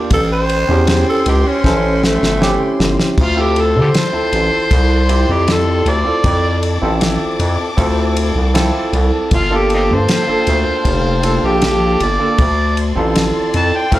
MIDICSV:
0, 0, Header, 1, 7, 480
1, 0, Start_track
1, 0, Key_signature, -1, "minor"
1, 0, Tempo, 767263
1, 73, Time_signature, 4, 2, 24, 8
1, 8755, End_track
2, 0, Start_track
2, 0, Title_t, "String section"
2, 0, Program_c, 0, 48
2, 0, Note_on_c, 0, 77, 71
2, 0, Note_on_c, 0, 79, 65
2, 64, Note_off_c, 0, 77, 0
2, 73, Note_on_c, 0, 72, 77
2, 73, Note_on_c, 0, 84, 87
2, 1963, Note_off_c, 0, 79, 0
2, 1971, Note_off_c, 0, 72, 0
2, 1971, Note_off_c, 0, 84, 0
2, 1988, Note_on_c, 0, 84, 88
2, 1992, Note_on_c, 0, 81, 70
2, 1993, Note_on_c, 0, 74, 69
2, 3889, Note_off_c, 0, 84, 0
2, 3908, Note_on_c, 0, 86, 85
2, 5806, Note_off_c, 0, 74, 0
2, 5810, Note_off_c, 0, 86, 0
2, 5826, Note_on_c, 0, 79, 69
2, 5827, Note_on_c, 0, 77, 80
2, 7730, Note_off_c, 0, 79, 0
2, 7731, Note_off_c, 0, 77, 0
2, 7744, Note_on_c, 0, 74, 79
2, 7747, Note_on_c, 0, 84, 78
2, 8755, Note_off_c, 0, 74, 0
2, 8755, Note_off_c, 0, 81, 0
2, 8755, Note_off_c, 0, 84, 0
2, 8755, End_track
3, 0, Start_track
3, 0, Title_t, "Tenor saxophone"
3, 0, Program_c, 1, 66
3, 82, Note_on_c, 1, 69, 103
3, 191, Note_off_c, 1, 69, 0
3, 202, Note_on_c, 1, 72, 110
3, 663, Note_off_c, 1, 72, 0
3, 683, Note_on_c, 1, 69, 92
3, 788, Note_off_c, 1, 69, 0
3, 804, Note_on_c, 1, 67, 86
3, 922, Note_on_c, 1, 61, 104
3, 932, Note_off_c, 1, 67, 0
3, 1277, Note_on_c, 1, 57, 100
3, 1286, Note_off_c, 1, 61, 0
3, 1739, Note_off_c, 1, 57, 0
3, 8755, End_track
4, 0, Start_track
4, 0, Title_t, "Harmonica"
4, 0, Program_c, 2, 22
4, 2017, Note_on_c, 2, 65, 89
4, 2134, Note_on_c, 2, 67, 78
4, 2143, Note_off_c, 2, 65, 0
4, 2257, Note_on_c, 2, 69, 70
4, 2267, Note_off_c, 2, 67, 0
4, 2358, Note_off_c, 2, 69, 0
4, 2385, Note_on_c, 2, 67, 66
4, 2385, Note_on_c, 2, 69, 66
4, 2385, Note_on_c, 2, 72, 94
4, 2432, Note_off_c, 2, 69, 0
4, 2441, Note_off_c, 2, 67, 0
4, 3330, Note_on_c, 2, 67, 75
4, 3339, Note_off_c, 2, 72, 0
4, 3452, Note_on_c, 2, 69, 84
4, 3461, Note_off_c, 2, 67, 0
4, 3686, Note_on_c, 2, 74, 100
4, 3695, Note_off_c, 2, 69, 0
4, 4143, Note_off_c, 2, 74, 0
4, 5849, Note_on_c, 2, 65, 97
4, 5978, Note_on_c, 2, 67, 81
4, 5987, Note_off_c, 2, 65, 0
4, 6075, Note_off_c, 2, 67, 0
4, 6095, Note_on_c, 2, 60, 54
4, 6095, Note_on_c, 2, 63, 54
4, 6095, Note_on_c, 2, 67, 77
4, 6143, Note_off_c, 2, 63, 0
4, 6148, Note_off_c, 2, 60, 0
4, 6217, Note_on_c, 2, 72, 84
4, 6226, Note_off_c, 2, 67, 0
4, 7173, Note_on_c, 2, 67, 85
4, 7182, Note_off_c, 2, 72, 0
4, 7273, Note_off_c, 2, 67, 0
4, 7297, Note_on_c, 2, 67, 91
4, 7529, Note_on_c, 2, 74, 98
4, 7539, Note_off_c, 2, 67, 0
4, 7987, Note_off_c, 2, 74, 0
4, 8488, Note_on_c, 2, 81, 98
4, 8608, Note_on_c, 2, 79, 85
4, 8618, Note_off_c, 2, 81, 0
4, 8731, Note_on_c, 2, 77, 94
4, 8740, Note_off_c, 2, 79, 0
4, 8755, Note_off_c, 2, 77, 0
4, 8755, End_track
5, 0, Start_track
5, 0, Title_t, "Tine electric piano"
5, 0, Program_c, 3, 4
5, 0, Note_on_c, 3, 58, 73
5, 0, Note_on_c, 3, 62, 65
5, 0, Note_on_c, 3, 65, 65
5, 0, Note_on_c, 3, 67, 74
5, 67, Note_off_c, 3, 58, 0
5, 69, Note_off_c, 3, 62, 0
5, 70, Note_off_c, 3, 65, 0
5, 73, Note_off_c, 3, 67, 0
5, 423, Note_on_c, 3, 60, 75
5, 428, Note_on_c, 3, 61, 71
5, 431, Note_on_c, 3, 64, 68
5, 434, Note_on_c, 3, 67, 75
5, 968, Note_off_c, 3, 60, 0
5, 971, Note_off_c, 3, 61, 0
5, 972, Note_off_c, 3, 64, 0
5, 973, Note_off_c, 3, 67, 0
5, 1024, Note_on_c, 3, 72, 81
5, 1028, Note_on_c, 3, 61, 71
5, 1029, Note_on_c, 3, 64, 70
5, 1032, Note_on_c, 3, 69, 82
5, 1461, Note_off_c, 3, 72, 0
5, 1463, Note_off_c, 3, 61, 0
5, 1463, Note_off_c, 3, 64, 0
5, 1465, Note_off_c, 3, 69, 0
5, 1504, Note_on_c, 3, 60, 83
5, 1507, Note_on_c, 3, 61, 75
5, 1510, Note_on_c, 3, 64, 78
5, 1513, Note_on_c, 3, 67, 97
5, 1986, Note_off_c, 3, 60, 0
5, 1988, Note_off_c, 3, 61, 0
5, 1989, Note_off_c, 3, 64, 0
5, 1991, Note_off_c, 3, 67, 0
5, 2102, Note_on_c, 3, 60, 88
5, 2106, Note_on_c, 3, 64, 74
5, 2109, Note_on_c, 3, 65, 71
5, 2112, Note_on_c, 3, 69, 88
5, 2539, Note_off_c, 3, 60, 0
5, 2541, Note_off_c, 3, 64, 0
5, 2542, Note_off_c, 3, 65, 0
5, 2544, Note_off_c, 3, 69, 0
5, 2580, Note_on_c, 3, 60, 70
5, 2583, Note_on_c, 3, 64, 61
5, 2587, Note_on_c, 3, 65, 59
5, 2590, Note_on_c, 3, 69, 77
5, 3126, Note_off_c, 3, 60, 0
5, 3127, Note_off_c, 3, 64, 0
5, 3129, Note_off_c, 3, 65, 0
5, 3131, Note_off_c, 3, 69, 0
5, 3181, Note_on_c, 3, 60, 77
5, 3185, Note_on_c, 3, 64, 72
5, 3187, Note_on_c, 3, 65, 63
5, 3192, Note_on_c, 3, 67, 87
5, 3727, Note_off_c, 3, 60, 0
5, 3729, Note_off_c, 3, 64, 0
5, 3730, Note_off_c, 3, 65, 0
5, 3733, Note_off_c, 3, 67, 0
5, 3780, Note_on_c, 3, 60, 67
5, 3784, Note_on_c, 3, 64, 61
5, 3787, Note_on_c, 3, 65, 67
5, 3790, Note_on_c, 3, 69, 73
5, 4218, Note_off_c, 3, 60, 0
5, 4220, Note_off_c, 3, 64, 0
5, 4221, Note_off_c, 3, 65, 0
5, 4223, Note_off_c, 3, 69, 0
5, 4263, Note_on_c, 3, 60, 86
5, 4267, Note_on_c, 3, 64, 84
5, 4270, Note_on_c, 3, 65, 73
5, 4274, Note_on_c, 3, 69, 88
5, 4807, Note_off_c, 3, 60, 0
5, 4809, Note_off_c, 3, 64, 0
5, 4811, Note_off_c, 3, 65, 0
5, 4813, Note_off_c, 3, 69, 0
5, 4860, Note_on_c, 3, 60, 87
5, 4863, Note_on_c, 3, 64, 80
5, 4867, Note_on_c, 3, 65, 76
5, 4870, Note_on_c, 3, 69, 92
5, 5299, Note_off_c, 3, 60, 0
5, 5300, Note_off_c, 3, 64, 0
5, 5302, Note_off_c, 3, 65, 0
5, 5304, Note_off_c, 3, 69, 0
5, 5341, Note_on_c, 3, 60, 88
5, 5344, Note_on_c, 3, 64, 88
5, 5349, Note_on_c, 3, 65, 82
5, 5352, Note_on_c, 3, 69, 103
5, 5825, Note_off_c, 3, 60, 0
5, 5827, Note_off_c, 3, 64, 0
5, 5829, Note_off_c, 3, 65, 0
5, 5831, Note_off_c, 3, 69, 0
5, 5946, Note_on_c, 3, 58, 86
5, 5949, Note_on_c, 3, 62, 80
5, 5954, Note_on_c, 3, 65, 82
5, 5957, Note_on_c, 3, 69, 94
5, 6381, Note_off_c, 3, 58, 0
5, 6383, Note_off_c, 3, 62, 0
5, 6385, Note_off_c, 3, 65, 0
5, 6387, Note_off_c, 3, 69, 0
5, 6428, Note_on_c, 3, 58, 71
5, 6432, Note_on_c, 3, 62, 62
5, 6435, Note_on_c, 3, 65, 62
5, 6439, Note_on_c, 3, 69, 78
5, 6971, Note_off_c, 3, 58, 0
5, 6973, Note_off_c, 3, 62, 0
5, 6974, Note_off_c, 3, 65, 0
5, 6976, Note_off_c, 3, 69, 0
5, 7023, Note_on_c, 3, 58, 71
5, 7026, Note_on_c, 3, 62, 71
5, 7031, Note_on_c, 3, 65, 74
5, 7035, Note_on_c, 3, 69, 87
5, 7570, Note_off_c, 3, 58, 0
5, 7572, Note_off_c, 3, 62, 0
5, 7574, Note_off_c, 3, 65, 0
5, 7576, Note_off_c, 3, 69, 0
5, 7625, Note_on_c, 3, 58, 73
5, 7630, Note_on_c, 3, 62, 65
5, 7632, Note_on_c, 3, 65, 67
5, 7637, Note_on_c, 3, 69, 75
5, 7747, Note_off_c, 3, 58, 0
5, 7750, Note_off_c, 3, 62, 0
5, 7751, Note_off_c, 3, 65, 0
5, 7753, Note_off_c, 3, 69, 0
5, 8104, Note_on_c, 3, 60, 81
5, 8109, Note_on_c, 3, 64, 74
5, 8112, Note_on_c, 3, 65, 75
5, 8117, Note_on_c, 3, 69, 94
5, 8650, Note_off_c, 3, 60, 0
5, 8652, Note_off_c, 3, 64, 0
5, 8654, Note_off_c, 3, 65, 0
5, 8657, Note_off_c, 3, 69, 0
5, 8702, Note_on_c, 3, 60, 73
5, 8707, Note_on_c, 3, 64, 67
5, 8708, Note_on_c, 3, 65, 66
5, 8713, Note_on_c, 3, 69, 76
5, 8755, Note_off_c, 3, 60, 0
5, 8755, Note_off_c, 3, 64, 0
5, 8755, Note_off_c, 3, 65, 0
5, 8755, Note_off_c, 3, 69, 0
5, 8755, End_track
6, 0, Start_track
6, 0, Title_t, "FM bass"
6, 0, Program_c, 4, 39
6, 68, Note_on_c, 4, 33, 89
6, 408, Note_off_c, 4, 33, 0
6, 432, Note_on_c, 4, 40, 97
6, 657, Note_off_c, 4, 40, 0
6, 790, Note_on_c, 4, 37, 94
6, 905, Note_off_c, 4, 37, 0
6, 1027, Note_on_c, 4, 33, 104
6, 1367, Note_off_c, 4, 33, 0
6, 1394, Note_on_c, 4, 31, 75
6, 1618, Note_off_c, 4, 31, 0
6, 1752, Note_on_c, 4, 31, 102
6, 1865, Note_off_c, 4, 31, 0
6, 1989, Note_on_c, 4, 38, 91
6, 2349, Note_on_c, 4, 50, 88
6, 2358, Note_off_c, 4, 38, 0
6, 2460, Note_off_c, 4, 50, 0
6, 2588, Note_on_c, 4, 38, 39
6, 2648, Note_off_c, 4, 38, 0
6, 2707, Note_on_c, 4, 33, 92
6, 2822, Note_off_c, 4, 33, 0
6, 2947, Note_on_c, 4, 36, 109
6, 3286, Note_off_c, 4, 36, 0
6, 3311, Note_on_c, 4, 41, 81
6, 3645, Note_off_c, 4, 41, 0
6, 3663, Note_on_c, 4, 38, 89
6, 3780, Note_off_c, 4, 38, 0
6, 3904, Note_on_c, 4, 41, 88
6, 4245, Note_off_c, 4, 41, 0
6, 4269, Note_on_c, 4, 33, 98
6, 4494, Note_off_c, 4, 33, 0
6, 4626, Note_on_c, 4, 41, 82
6, 4742, Note_off_c, 4, 41, 0
6, 4866, Note_on_c, 4, 38, 97
6, 5206, Note_off_c, 4, 38, 0
6, 5228, Note_on_c, 4, 36, 80
6, 5454, Note_off_c, 4, 36, 0
6, 5587, Note_on_c, 4, 36, 101
6, 5702, Note_off_c, 4, 36, 0
6, 5827, Note_on_c, 4, 31, 102
6, 6194, Note_on_c, 4, 43, 93
6, 6203, Note_off_c, 4, 31, 0
6, 6303, Note_off_c, 4, 43, 0
6, 6435, Note_on_c, 4, 31, 37
6, 6493, Note_off_c, 4, 31, 0
6, 6553, Note_on_c, 4, 38, 100
6, 6666, Note_off_c, 4, 38, 0
6, 6789, Note_on_c, 4, 29, 111
6, 7129, Note_off_c, 4, 29, 0
6, 7154, Note_on_c, 4, 34, 85
6, 7488, Note_off_c, 4, 34, 0
6, 7512, Note_on_c, 4, 31, 91
6, 7626, Note_off_c, 4, 31, 0
6, 7750, Note_on_c, 4, 38, 94
6, 8090, Note_off_c, 4, 38, 0
6, 8112, Note_on_c, 4, 33, 105
6, 8338, Note_off_c, 4, 33, 0
6, 8473, Note_on_c, 4, 41, 93
6, 8587, Note_off_c, 4, 41, 0
6, 8708, Note_on_c, 4, 38, 106
6, 8755, Note_off_c, 4, 38, 0
6, 8755, End_track
7, 0, Start_track
7, 0, Title_t, "Drums"
7, 66, Note_on_c, 9, 51, 80
7, 68, Note_on_c, 9, 36, 106
7, 129, Note_off_c, 9, 51, 0
7, 131, Note_off_c, 9, 36, 0
7, 309, Note_on_c, 9, 51, 62
7, 372, Note_off_c, 9, 51, 0
7, 546, Note_on_c, 9, 51, 78
7, 552, Note_on_c, 9, 38, 114
7, 609, Note_off_c, 9, 51, 0
7, 614, Note_off_c, 9, 38, 0
7, 787, Note_on_c, 9, 51, 69
7, 850, Note_off_c, 9, 51, 0
7, 1028, Note_on_c, 9, 36, 87
7, 1032, Note_on_c, 9, 38, 66
7, 1090, Note_off_c, 9, 36, 0
7, 1095, Note_off_c, 9, 38, 0
7, 1274, Note_on_c, 9, 38, 76
7, 1336, Note_off_c, 9, 38, 0
7, 1396, Note_on_c, 9, 38, 63
7, 1458, Note_off_c, 9, 38, 0
7, 1513, Note_on_c, 9, 38, 87
7, 1575, Note_off_c, 9, 38, 0
7, 1753, Note_on_c, 9, 38, 92
7, 1816, Note_off_c, 9, 38, 0
7, 1874, Note_on_c, 9, 38, 85
7, 1936, Note_off_c, 9, 38, 0
7, 1988, Note_on_c, 9, 36, 109
7, 1988, Note_on_c, 9, 49, 90
7, 2050, Note_off_c, 9, 36, 0
7, 2051, Note_off_c, 9, 49, 0
7, 2228, Note_on_c, 9, 51, 57
7, 2290, Note_off_c, 9, 51, 0
7, 2468, Note_on_c, 9, 51, 74
7, 2473, Note_on_c, 9, 38, 94
7, 2530, Note_off_c, 9, 51, 0
7, 2536, Note_off_c, 9, 38, 0
7, 2707, Note_on_c, 9, 51, 60
7, 2769, Note_off_c, 9, 51, 0
7, 2946, Note_on_c, 9, 36, 79
7, 2946, Note_on_c, 9, 51, 83
7, 3008, Note_off_c, 9, 36, 0
7, 3008, Note_off_c, 9, 51, 0
7, 3186, Note_on_c, 9, 51, 60
7, 3248, Note_off_c, 9, 51, 0
7, 3426, Note_on_c, 9, 51, 73
7, 3432, Note_on_c, 9, 38, 97
7, 3489, Note_off_c, 9, 51, 0
7, 3494, Note_off_c, 9, 38, 0
7, 3667, Note_on_c, 9, 51, 57
7, 3729, Note_off_c, 9, 51, 0
7, 3904, Note_on_c, 9, 51, 82
7, 3905, Note_on_c, 9, 36, 107
7, 3966, Note_off_c, 9, 51, 0
7, 3967, Note_off_c, 9, 36, 0
7, 4146, Note_on_c, 9, 51, 61
7, 4208, Note_off_c, 9, 51, 0
7, 4386, Note_on_c, 9, 51, 77
7, 4392, Note_on_c, 9, 38, 107
7, 4449, Note_off_c, 9, 51, 0
7, 4454, Note_off_c, 9, 38, 0
7, 4627, Note_on_c, 9, 51, 68
7, 4690, Note_off_c, 9, 51, 0
7, 4866, Note_on_c, 9, 36, 85
7, 4868, Note_on_c, 9, 51, 88
7, 4929, Note_off_c, 9, 36, 0
7, 4930, Note_off_c, 9, 51, 0
7, 5109, Note_on_c, 9, 51, 73
7, 5171, Note_off_c, 9, 51, 0
7, 5349, Note_on_c, 9, 51, 86
7, 5355, Note_on_c, 9, 38, 108
7, 5412, Note_off_c, 9, 51, 0
7, 5417, Note_off_c, 9, 38, 0
7, 5589, Note_on_c, 9, 51, 60
7, 5652, Note_off_c, 9, 51, 0
7, 5825, Note_on_c, 9, 51, 82
7, 5827, Note_on_c, 9, 36, 97
7, 5888, Note_off_c, 9, 51, 0
7, 5890, Note_off_c, 9, 36, 0
7, 6068, Note_on_c, 9, 51, 57
7, 6131, Note_off_c, 9, 51, 0
7, 6309, Note_on_c, 9, 51, 82
7, 6315, Note_on_c, 9, 38, 110
7, 6372, Note_off_c, 9, 51, 0
7, 6378, Note_off_c, 9, 38, 0
7, 6549, Note_on_c, 9, 51, 64
7, 6611, Note_off_c, 9, 51, 0
7, 6788, Note_on_c, 9, 36, 80
7, 6788, Note_on_c, 9, 51, 82
7, 6851, Note_off_c, 9, 36, 0
7, 6851, Note_off_c, 9, 51, 0
7, 7028, Note_on_c, 9, 51, 68
7, 7090, Note_off_c, 9, 51, 0
7, 7267, Note_on_c, 9, 51, 79
7, 7273, Note_on_c, 9, 38, 108
7, 7330, Note_off_c, 9, 51, 0
7, 7335, Note_off_c, 9, 38, 0
7, 7509, Note_on_c, 9, 51, 61
7, 7572, Note_off_c, 9, 51, 0
7, 7748, Note_on_c, 9, 51, 76
7, 7749, Note_on_c, 9, 36, 106
7, 7810, Note_off_c, 9, 51, 0
7, 7811, Note_off_c, 9, 36, 0
7, 7990, Note_on_c, 9, 51, 56
7, 8052, Note_off_c, 9, 51, 0
7, 8230, Note_on_c, 9, 51, 78
7, 8236, Note_on_c, 9, 38, 100
7, 8293, Note_off_c, 9, 51, 0
7, 8298, Note_off_c, 9, 38, 0
7, 8469, Note_on_c, 9, 51, 62
7, 8532, Note_off_c, 9, 51, 0
7, 8709, Note_on_c, 9, 36, 86
7, 8709, Note_on_c, 9, 51, 89
7, 8755, Note_off_c, 9, 36, 0
7, 8755, Note_off_c, 9, 51, 0
7, 8755, End_track
0, 0, End_of_file